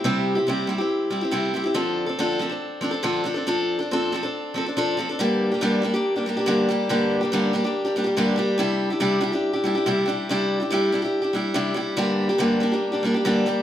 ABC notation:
X:1
M:4/4
L:1/16
Q:1/4=141
K:Gdor
V:1 name="Steel-string acoustic guitar"
[C,G,CEG]3 [CEG] [C,G,CEG]2 [G,CEG] [CEG]3 [G,CEG] [CEG] [C,G,CEG]2 [G,CEG] [CEG] | [D,F,CDA]3 [CDA] [D,F,CDA]2 [F,CDA] [CDA]3 [F,CDA] [CDA] [D,F,CDA]2 [F,CDA] [CDA] | [F,CDA]3 [CDA] [F,CDA]2 [F,CDA] [CDA]3 [F,CDA] [CDA] [F,CDA]2 [F,CDA] [CDA] | [G,,D,G,B,DG]3 [G,B,DG] [G,,D,G,B,DG]2 [G,B,DG] [G,B,DG]2 [G,B,DG] [G,B,DG] [G,B,DG] [G,,D,G,B,DG]2 [G,B,DG]2 |
[G,,D,G,B,DG]3 [G,B,DG] [G,,D,G,B,DG]2 [G,B,DG] [G,B,DG]2 [G,B,DG] [G,B,DG] [G,B,DG] [G,,D,G,B,DG]2 [G,B,DG]2 | [C,G,DEG]3 [DEG] [C,G,DEG]2 [G,DEG] [DEG]2 [DEG] [G,DEG] [DEG] [C,G,DEG]2 [G,DEG]2 | [C,G,DEG]3 [DEG] [C,G,DEG]2 [G,DEG] [DEG]2 [DEG] [G,DEG]2 [C,G,DEG]2 [G,DEG]2 | [G,,D,G,B,DG]3 [G,B,DG] [G,,D,G,B,DG]2 [G,B,DG] [G,B,DG]2 [G,B,DG] [G,B,DG] [G,B,DG] [G,,D,G,B,DG]2 [G,B,DG]2 |]